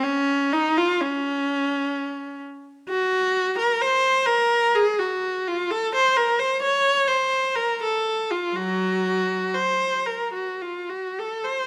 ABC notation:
X:1
M:3/4
L:1/16
Q:1/4=63
K:Gblyd
V:1 name="Viola"
D2 E F D6 z2 | G3 B c2 B2 A G2 F | =A c B c d2 c2 B A2 F | [G,G]4 c2 B G F G =A c |]